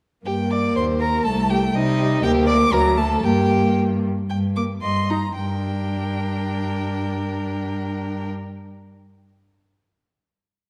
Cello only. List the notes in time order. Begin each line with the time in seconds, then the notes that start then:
0.25 G2
0.76 D#2
1.25 C2
1.74 C3
2.23 D2
2.73 D2
3.23 G2
4.30 G2
4.82 G2
5.37 G2